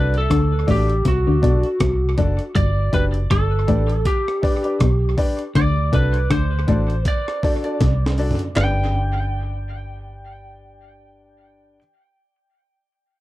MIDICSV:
0, 0, Header, 1, 6, 480
1, 0, Start_track
1, 0, Key_signature, 1, "major"
1, 0, Tempo, 750188
1, 1633, Time_signature, 4, 2, 24, 8
1, 8447, End_track
2, 0, Start_track
2, 0, Title_t, "Lead electric guitar"
2, 0, Program_c, 0, 29
2, 0, Note_on_c, 0, 71, 92
2, 104, Note_off_c, 0, 71, 0
2, 113, Note_on_c, 0, 69, 81
2, 452, Note_on_c, 0, 67, 81
2, 455, Note_off_c, 0, 69, 0
2, 687, Note_off_c, 0, 67, 0
2, 689, Note_on_c, 0, 66, 71
2, 1376, Note_off_c, 0, 66, 0
2, 1638, Note_on_c, 0, 74, 101
2, 1882, Note_on_c, 0, 71, 105
2, 1883, Note_off_c, 0, 74, 0
2, 1945, Note_off_c, 0, 71, 0
2, 2120, Note_on_c, 0, 69, 94
2, 2602, Note_on_c, 0, 67, 78
2, 2611, Note_off_c, 0, 69, 0
2, 3292, Note_off_c, 0, 67, 0
2, 3559, Note_on_c, 0, 74, 104
2, 3803, Note_off_c, 0, 74, 0
2, 3803, Note_on_c, 0, 71, 92
2, 4038, Note_off_c, 0, 71, 0
2, 4040, Note_on_c, 0, 72, 93
2, 4491, Note_off_c, 0, 72, 0
2, 4528, Note_on_c, 0, 74, 90
2, 5215, Note_off_c, 0, 74, 0
2, 5483, Note_on_c, 0, 79, 81
2, 7543, Note_off_c, 0, 79, 0
2, 8447, End_track
3, 0, Start_track
3, 0, Title_t, "Upright piano"
3, 0, Program_c, 1, 0
3, 0, Note_on_c, 1, 62, 92
3, 0, Note_on_c, 1, 66, 89
3, 0, Note_on_c, 1, 69, 84
3, 0, Note_on_c, 1, 74, 104
3, 98, Note_off_c, 1, 62, 0
3, 99, Note_off_c, 1, 66, 0
3, 101, Note_off_c, 1, 69, 0
3, 102, Note_off_c, 1, 74, 0
3, 429, Note_on_c, 1, 62, 91
3, 430, Note_on_c, 1, 66, 77
3, 434, Note_on_c, 1, 69, 81
3, 435, Note_on_c, 1, 74, 100
3, 579, Note_off_c, 1, 62, 0
3, 579, Note_off_c, 1, 66, 0
3, 581, Note_off_c, 1, 69, 0
3, 582, Note_off_c, 1, 74, 0
3, 908, Note_on_c, 1, 62, 89
3, 911, Note_on_c, 1, 66, 83
3, 913, Note_on_c, 1, 69, 80
3, 916, Note_on_c, 1, 74, 95
3, 1058, Note_off_c, 1, 62, 0
3, 1059, Note_off_c, 1, 66, 0
3, 1061, Note_off_c, 1, 69, 0
3, 1062, Note_off_c, 1, 74, 0
3, 1390, Note_on_c, 1, 62, 84
3, 1392, Note_on_c, 1, 66, 83
3, 1396, Note_on_c, 1, 69, 77
3, 1397, Note_on_c, 1, 74, 97
3, 1539, Note_off_c, 1, 62, 0
3, 1540, Note_off_c, 1, 66, 0
3, 1542, Note_off_c, 1, 69, 0
3, 1542, Note_off_c, 1, 74, 0
3, 1871, Note_on_c, 1, 62, 85
3, 1872, Note_on_c, 1, 67, 82
3, 1876, Note_on_c, 1, 71, 82
3, 1879, Note_on_c, 1, 74, 102
3, 2019, Note_off_c, 1, 62, 0
3, 2020, Note_off_c, 1, 67, 0
3, 2022, Note_off_c, 1, 71, 0
3, 2023, Note_off_c, 1, 74, 0
3, 2351, Note_on_c, 1, 62, 88
3, 2352, Note_on_c, 1, 67, 81
3, 2355, Note_on_c, 1, 71, 77
3, 2358, Note_on_c, 1, 74, 98
3, 2499, Note_off_c, 1, 62, 0
3, 2500, Note_off_c, 1, 67, 0
3, 2501, Note_off_c, 1, 71, 0
3, 2503, Note_off_c, 1, 74, 0
3, 2829, Note_on_c, 1, 62, 87
3, 2834, Note_on_c, 1, 67, 79
3, 2836, Note_on_c, 1, 71, 83
3, 2839, Note_on_c, 1, 74, 105
3, 2957, Note_off_c, 1, 62, 0
3, 2961, Note_off_c, 1, 67, 0
3, 2963, Note_off_c, 1, 71, 0
3, 2966, Note_off_c, 1, 74, 0
3, 2967, Note_on_c, 1, 62, 65
3, 2970, Note_on_c, 1, 67, 60
3, 2973, Note_on_c, 1, 71, 61
3, 2976, Note_on_c, 1, 74, 72
3, 3085, Note_off_c, 1, 62, 0
3, 3087, Note_off_c, 1, 67, 0
3, 3088, Note_off_c, 1, 71, 0
3, 3089, Note_off_c, 1, 74, 0
3, 3310, Note_on_c, 1, 62, 91
3, 3311, Note_on_c, 1, 67, 81
3, 3315, Note_on_c, 1, 71, 83
3, 3316, Note_on_c, 1, 74, 103
3, 3459, Note_off_c, 1, 62, 0
3, 3459, Note_off_c, 1, 67, 0
3, 3461, Note_off_c, 1, 71, 0
3, 3462, Note_off_c, 1, 74, 0
3, 3789, Note_on_c, 1, 62, 95
3, 3792, Note_on_c, 1, 66, 80
3, 3795, Note_on_c, 1, 69, 88
3, 3798, Note_on_c, 1, 74, 95
3, 3938, Note_off_c, 1, 62, 0
3, 3940, Note_off_c, 1, 66, 0
3, 3941, Note_off_c, 1, 69, 0
3, 3943, Note_off_c, 1, 74, 0
3, 4270, Note_on_c, 1, 62, 85
3, 4273, Note_on_c, 1, 66, 84
3, 4276, Note_on_c, 1, 69, 82
3, 4280, Note_on_c, 1, 74, 102
3, 4419, Note_off_c, 1, 62, 0
3, 4420, Note_off_c, 1, 66, 0
3, 4422, Note_off_c, 1, 69, 0
3, 4424, Note_off_c, 1, 74, 0
3, 4755, Note_on_c, 1, 62, 91
3, 4757, Note_on_c, 1, 66, 80
3, 4759, Note_on_c, 1, 69, 84
3, 4762, Note_on_c, 1, 74, 104
3, 4879, Note_off_c, 1, 62, 0
3, 4881, Note_off_c, 1, 66, 0
3, 4883, Note_off_c, 1, 69, 0
3, 4887, Note_off_c, 1, 74, 0
3, 4888, Note_on_c, 1, 62, 64
3, 4890, Note_on_c, 1, 66, 59
3, 4893, Note_on_c, 1, 69, 63
3, 4896, Note_on_c, 1, 74, 72
3, 5005, Note_off_c, 1, 62, 0
3, 5006, Note_off_c, 1, 66, 0
3, 5007, Note_off_c, 1, 69, 0
3, 5009, Note_off_c, 1, 74, 0
3, 5234, Note_on_c, 1, 62, 86
3, 5236, Note_on_c, 1, 66, 76
3, 5240, Note_on_c, 1, 69, 78
3, 5243, Note_on_c, 1, 74, 97
3, 5380, Note_off_c, 1, 62, 0
3, 5381, Note_off_c, 1, 66, 0
3, 5384, Note_off_c, 1, 69, 0
3, 5385, Note_off_c, 1, 74, 0
3, 5471, Note_on_c, 1, 62, 76
3, 5474, Note_on_c, 1, 67, 67
3, 5475, Note_on_c, 1, 71, 77
3, 5478, Note_on_c, 1, 74, 82
3, 7531, Note_off_c, 1, 62, 0
3, 7534, Note_off_c, 1, 67, 0
3, 7535, Note_off_c, 1, 71, 0
3, 7538, Note_off_c, 1, 74, 0
3, 8447, End_track
4, 0, Start_track
4, 0, Title_t, "Clean electric guitar"
4, 0, Program_c, 2, 27
4, 0, Note_on_c, 2, 48, 74
4, 97, Note_off_c, 2, 48, 0
4, 192, Note_on_c, 2, 50, 76
4, 337, Note_off_c, 2, 50, 0
4, 434, Note_on_c, 2, 45, 78
4, 578, Note_off_c, 2, 45, 0
4, 675, Note_on_c, 2, 48, 73
4, 757, Note_off_c, 2, 48, 0
4, 813, Note_on_c, 2, 50, 72
4, 874, Note_off_c, 2, 50, 0
4, 913, Note_on_c, 2, 47, 71
4, 996, Note_off_c, 2, 47, 0
4, 1156, Note_on_c, 2, 48, 80
4, 1299, Note_off_c, 2, 48, 0
4, 1397, Note_on_c, 2, 42, 78
4, 1478, Note_off_c, 2, 42, 0
4, 1633, Note_on_c, 2, 43, 90
4, 1777, Note_off_c, 2, 43, 0
4, 1877, Note_on_c, 2, 42, 72
4, 2020, Note_off_c, 2, 42, 0
4, 2118, Note_on_c, 2, 43, 76
4, 2261, Note_off_c, 2, 43, 0
4, 2355, Note_on_c, 2, 45, 77
4, 2498, Note_off_c, 2, 45, 0
4, 3078, Note_on_c, 2, 47, 81
4, 3220, Note_off_c, 2, 47, 0
4, 3553, Note_on_c, 2, 50, 91
4, 3697, Note_off_c, 2, 50, 0
4, 3792, Note_on_c, 2, 48, 74
4, 3936, Note_off_c, 2, 48, 0
4, 4032, Note_on_c, 2, 50, 80
4, 4176, Note_off_c, 2, 50, 0
4, 4277, Note_on_c, 2, 45, 76
4, 4420, Note_off_c, 2, 45, 0
4, 4994, Note_on_c, 2, 48, 77
4, 5138, Note_off_c, 2, 48, 0
4, 8447, End_track
5, 0, Start_track
5, 0, Title_t, "Fingered electric bass"
5, 0, Program_c, 3, 33
5, 0, Note_on_c, 3, 36, 88
5, 172, Note_off_c, 3, 36, 0
5, 198, Note_on_c, 3, 38, 93
5, 412, Note_off_c, 3, 38, 0
5, 440, Note_on_c, 3, 33, 88
5, 653, Note_off_c, 3, 33, 0
5, 677, Note_on_c, 3, 36, 88
5, 799, Note_off_c, 3, 36, 0
5, 819, Note_on_c, 3, 38, 86
5, 907, Note_off_c, 3, 38, 0
5, 919, Note_on_c, 3, 35, 85
5, 1040, Note_off_c, 3, 35, 0
5, 1158, Note_on_c, 3, 36, 94
5, 1372, Note_off_c, 3, 36, 0
5, 1398, Note_on_c, 3, 30, 90
5, 1519, Note_off_c, 3, 30, 0
5, 1640, Note_on_c, 3, 31, 103
5, 1853, Note_off_c, 3, 31, 0
5, 1880, Note_on_c, 3, 30, 81
5, 2093, Note_off_c, 3, 30, 0
5, 2120, Note_on_c, 3, 31, 95
5, 2332, Note_off_c, 3, 31, 0
5, 2360, Note_on_c, 3, 33, 83
5, 2573, Note_off_c, 3, 33, 0
5, 3079, Note_on_c, 3, 35, 104
5, 3292, Note_off_c, 3, 35, 0
5, 3559, Note_on_c, 3, 38, 104
5, 3772, Note_off_c, 3, 38, 0
5, 3798, Note_on_c, 3, 36, 81
5, 4011, Note_off_c, 3, 36, 0
5, 4039, Note_on_c, 3, 38, 97
5, 4252, Note_off_c, 3, 38, 0
5, 4278, Note_on_c, 3, 33, 82
5, 4492, Note_off_c, 3, 33, 0
5, 5000, Note_on_c, 3, 36, 85
5, 5336, Note_off_c, 3, 36, 0
5, 5483, Note_on_c, 3, 31, 98
5, 7543, Note_off_c, 3, 31, 0
5, 8447, End_track
6, 0, Start_track
6, 0, Title_t, "Drums"
6, 89, Note_on_c, 9, 42, 51
6, 153, Note_off_c, 9, 42, 0
6, 195, Note_on_c, 9, 36, 104
6, 197, Note_on_c, 9, 37, 115
6, 198, Note_on_c, 9, 42, 89
6, 259, Note_off_c, 9, 36, 0
6, 261, Note_off_c, 9, 37, 0
6, 262, Note_off_c, 9, 42, 0
6, 435, Note_on_c, 9, 36, 95
6, 436, Note_on_c, 9, 46, 66
6, 499, Note_off_c, 9, 36, 0
6, 500, Note_off_c, 9, 46, 0
6, 573, Note_on_c, 9, 42, 50
6, 637, Note_off_c, 9, 42, 0
6, 672, Note_on_c, 9, 42, 90
6, 673, Note_on_c, 9, 36, 97
6, 736, Note_off_c, 9, 42, 0
6, 737, Note_off_c, 9, 36, 0
6, 914, Note_on_c, 9, 36, 99
6, 922, Note_on_c, 9, 42, 73
6, 978, Note_off_c, 9, 36, 0
6, 986, Note_off_c, 9, 42, 0
6, 1046, Note_on_c, 9, 42, 50
6, 1110, Note_off_c, 9, 42, 0
6, 1153, Note_on_c, 9, 42, 102
6, 1154, Note_on_c, 9, 36, 127
6, 1156, Note_on_c, 9, 37, 122
6, 1217, Note_off_c, 9, 42, 0
6, 1218, Note_off_c, 9, 36, 0
6, 1220, Note_off_c, 9, 37, 0
6, 1392, Note_on_c, 9, 42, 70
6, 1394, Note_on_c, 9, 36, 94
6, 1456, Note_off_c, 9, 42, 0
6, 1457, Note_off_c, 9, 36, 0
6, 1528, Note_on_c, 9, 42, 57
6, 1592, Note_off_c, 9, 42, 0
6, 1634, Note_on_c, 9, 42, 92
6, 1635, Note_on_c, 9, 36, 112
6, 1698, Note_off_c, 9, 42, 0
6, 1699, Note_off_c, 9, 36, 0
6, 1874, Note_on_c, 9, 36, 94
6, 1878, Note_on_c, 9, 42, 74
6, 1938, Note_off_c, 9, 36, 0
6, 1942, Note_off_c, 9, 42, 0
6, 2008, Note_on_c, 9, 42, 51
6, 2072, Note_off_c, 9, 42, 0
6, 2115, Note_on_c, 9, 36, 112
6, 2116, Note_on_c, 9, 37, 120
6, 2117, Note_on_c, 9, 42, 86
6, 2179, Note_off_c, 9, 36, 0
6, 2180, Note_off_c, 9, 37, 0
6, 2181, Note_off_c, 9, 42, 0
6, 2355, Note_on_c, 9, 36, 88
6, 2356, Note_on_c, 9, 42, 64
6, 2419, Note_off_c, 9, 36, 0
6, 2420, Note_off_c, 9, 42, 0
6, 2492, Note_on_c, 9, 42, 52
6, 2556, Note_off_c, 9, 42, 0
6, 2594, Note_on_c, 9, 36, 106
6, 2594, Note_on_c, 9, 42, 93
6, 2658, Note_off_c, 9, 36, 0
6, 2658, Note_off_c, 9, 42, 0
6, 2740, Note_on_c, 9, 37, 65
6, 2804, Note_off_c, 9, 37, 0
6, 2836, Note_on_c, 9, 36, 100
6, 2845, Note_on_c, 9, 46, 51
6, 2900, Note_off_c, 9, 36, 0
6, 2909, Note_off_c, 9, 46, 0
6, 2970, Note_on_c, 9, 42, 51
6, 3034, Note_off_c, 9, 42, 0
6, 3073, Note_on_c, 9, 42, 98
6, 3075, Note_on_c, 9, 36, 122
6, 3076, Note_on_c, 9, 37, 123
6, 3137, Note_off_c, 9, 42, 0
6, 3139, Note_off_c, 9, 36, 0
6, 3140, Note_off_c, 9, 37, 0
6, 3312, Note_on_c, 9, 46, 75
6, 3313, Note_on_c, 9, 36, 97
6, 3376, Note_off_c, 9, 46, 0
6, 3377, Note_off_c, 9, 36, 0
6, 3447, Note_on_c, 9, 42, 57
6, 3511, Note_off_c, 9, 42, 0
6, 3553, Note_on_c, 9, 42, 97
6, 3554, Note_on_c, 9, 36, 116
6, 3617, Note_off_c, 9, 42, 0
6, 3618, Note_off_c, 9, 36, 0
6, 3794, Note_on_c, 9, 36, 96
6, 3796, Note_on_c, 9, 42, 69
6, 3858, Note_off_c, 9, 36, 0
6, 3860, Note_off_c, 9, 42, 0
6, 3927, Note_on_c, 9, 42, 52
6, 3991, Note_off_c, 9, 42, 0
6, 4034, Note_on_c, 9, 36, 104
6, 4035, Note_on_c, 9, 37, 127
6, 4035, Note_on_c, 9, 42, 85
6, 4098, Note_off_c, 9, 36, 0
6, 4099, Note_off_c, 9, 37, 0
6, 4099, Note_off_c, 9, 42, 0
6, 4273, Note_on_c, 9, 42, 60
6, 4274, Note_on_c, 9, 36, 95
6, 4337, Note_off_c, 9, 42, 0
6, 4338, Note_off_c, 9, 36, 0
6, 4413, Note_on_c, 9, 42, 53
6, 4477, Note_off_c, 9, 42, 0
6, 4512, Note_on_c, 9, 42, 95
6, 4513, Note_on_c, 9, 36, 101
6, 4576, Note_off_c, 9, 42, 0
6, 4577, Note_off_c, 9, 36, 0
6, 4658, Note_on_c, 9, 37, 62
6, 4722, Note_off_c, 9, 37, 0
6, 4755, Note_on_c, 9, 36, 95
6, 4763, Note_on_c, 9, 46, 54
6, 4819, Note_off_c, 9, 36, 0
6, 4827, Note_off_c, 9, 46, 0
6, 4888, Note_on_c, 9, 42, 50
6, 4952, Note_off_c, 9, 42, 0
6, 4994, Note_on_c, 9, 42, 102
6, 4995, Note_on_c, 9, 36, 125
6, 5000, Note_on_c, 9, 38, 59
6, 5058, Note_off_c, 9, 42, 0
6, 5059, Note_off_c, 9, 36, 0
6, 5064, Note_off_c, 9, 38, 0
6, 5159, Note_on_c, 9, 38, 69
6, 5223, Note_off_c, 9, 38, 0
6, 5232, Note_on_c, 9, 46, 73
6, 5296, Note_off_c, 9, 46, 0
6, 5316, Note_on_c, 9, 43, 104
6, 5369, Note_on_c, 9, 42, 59
6, 5380, Note_off_c, 9, 43, 0
6, 5433, Note_off_c, 9, 42, 0
6, 5477, Note_on_c, 9, 39, 83
6, 5477, Note_on_c, 9, 43, 97
6, 5481, Note_on_c, 9, 38, 91
6, 5541, Note_off_c, 9, 39, 0
6, 5541, Note_off_c, 9, 43, 0
6, 5545, Note_off_c, 9, 38, 0
6, 8447, End_track
0, 0, End_of_file